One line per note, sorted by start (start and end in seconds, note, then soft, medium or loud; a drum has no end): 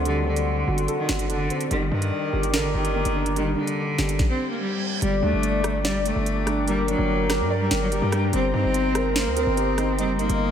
0.00 0.64 D2 loud
0.00 1.72 F#3 medium
0.00 0.26 C4 medium
0.00 0.68 D4 medium
0.00 0.68 F#4 loud
0.00 0.26 A4 loud
0.00 1.68 A4 medium
0.00 1.68 D5 medium
0.00 1.68 F#5 medium
0.00 1.68 C6 medium
0.05 0.22 D3 medium
0.05 1.09 G3 loud
0.05 closed hi-hat medium
0.26 0.94 D3 medium
0.26 1.30 C4 medium
0.36 closed hi-hat medium
0.68 0.87 G1 loud
0.68 1.07 F#4 medium
0.78 closed hi-hat medium
0.88 1.71 A4 loud
0.88 closed hi-hat medium
0.99 1.15 D#3 medium
1.09 1.31 G1 loud
1.09 1.71 F#4 medium
1.09 snare loud
1.19 1.27 D3 medium
1.19 closed hi-hat medium
1.29 1.41 F#1 loud
1.29 1.68 D3 medium
1.29 1.71 D4 medium
1.29 closed hi-hat medium
1.40 1.50 G1 loud
1.50 1.71 C4 medium
1.50 closed hi-hat medium
1.61 closed hi-hat medium
1.71 1.91 G1 loud
1.71 1.87 D#3 medium
1.71 2.74 G3 medium
1.71 4.17 A#4 medium
1.71 4.17 D5 medium
1.71 4.17 G5 medium
1.71 4.17 D6 medium
1.71 closed hi-hat medium
1.92 2.11 G2 loud
1.92 2.50 D#3 medium
1.92 2.95 D4 medium
2.02 closed hi-hat medium
2.33 2.55 G1 loud
2.33 2.73 G4 medium
2.43 closed hi-hat medium
2.54 2.65 A1 loud
2.54 2.70 D3 medium
2.54 3.57 A#4 loud
2.54 snare loud
2.54 closed hi-hat medium
2.64 2.74 G1 loud
2.74 3.04 G1 loud
2.74 3.33 D#3 medium
2.74 3.78 G4 medium
2.85 closed hi-hat medium
2.95 3.98 A#3 medium
3.05 3.55 G1 loud
3.05 closed hi-hat medium
3.16 3.56 D4 medium
3.26 closed hi-hat medium
3.36 3.53 D#3 medium
3.36 4.40 G3 medium
3.36 closed hi-hat medium
3.57 4.26 D3 medium
3.57 4.61 D4 medium
3.67 closed hi-hat medium
3.98 4.18 G1 loud
3.98 5.02 G4 medium
3.98 snare medium
4.09 closed hi-hat medium
4.19 kick loud
4.19 snare medium
4.19 reverse cymbal medium
4.29 4.46 C4 medium
4.51 4.59 A#3 medium
4.61 4.77 G3 medium
5.02 5.22 G1 loud
5.02 6.05 G3 medium
5.02 5.18 G3 medium
5.02 6.22 D5 loud
5.02 8.30 D5 medium
5.02 10.51 G5 medium
5.02 10.51 A#5 medium
5.02 8.30 D6 medium
5.02 closed hi-hat medium
5.23 5.32 D2 loud
5.23 5.81 A3 medium
5.23 6.26 D4 medium
5.33 6.12 G1 loud
5.43 closed hi-hat medium
5.64 cross-stick loud
5.64 closed hi-hat medium
5.85 6.01 G3 medium
5.85 6.88 D5 loud
5.85 snare loud
6.06 6.64 A3 medium
6.06 closed hi-hat medium
6.16 6.95 G1 loud
6.26 closed hi-hat medium
6.47 6.87 D4 medium
6.47 cross-stick medium
6.47 closed hi-hat medium
6.67 6.84 G3 medium
6.67 7.71 A#3 loud
6.67 7.88 A#4 loud
6.67 closed hi-hat medium
6.88 7.57 F#3 medium
6.88 7.92 D4 medium
6.88 closed hi-hat medium
6.99 7.41 G1 loud
7.30 7.70 A#4 loud
7.30 cross-stick loud
7.30 snare medium
7.30 closed hi-hat medium
7.40 7.69 G2 loud
7.50 8.33 D5 loud
7.60 7.77 G3 medium
7.71 7.93 G1 loud
7.71 8.33 A#4 medium
7.71 snare loud
7.71 closed hi-hat medium
7.81 7.90 F#3 medium
7.92 8.02 F#1 loud
7.92 8.31 G3 medium
7.92 8.33 G4 loud
7.92 closed hi-hat medium
8.02 8.32 G2 loud
8.12 8.33 D4 medium
8.12 cross-stick loud
8.12 closed hi-hat medium
8.33 8.53 G1 loud
8.33 9.37 G3 loud
8.33 8.49 C4 loud
8.33 9.53 C5 loud
8.33 10.51 D#5 medium
8.33 10.51 C6 medium
8.33 closed hi-hat medium
8.54 8.63 G2 loud
8.54 9.12 C4 loud
8.54 9.57 D#4 medium
8.64 9.28 G1 loud
8.74 closed hi-hat medium
8.95 9.35 A#4 medium
8.95 cross-stick medium
8.95 closed hi-hat medium
9.15 9.32 A#3 medium
9.15 10.19 C5 loud
9.15 snare loud
9.26 9.46 D2 loud
9.37 9.95 C4 medium
9.37 10.40 A#4 medium
9.37 closed hi-hat medium
9.47 10.00 G1 loud
9.57 10.51 G4 medium
9.57 closed hi-hat medium
9.78 10.18 D#4 medium
9.78 cross-stick medium
9.78 closed hi-hat medium
9.98 10.15 F#1 loud
9.98 10.51 G3 loud
9.98 10.15 C4 medium
9.98 10.51 D#5 loud
9.98 closed hi-hat medium
10.14 10.29 G1 loud
10.19 10.51 A#3 medium
10.19 10.51 D#4 medium
10.19 closed hi-hat soft
10.29 10.51 G1 loud
10.29 closed hi-hat medium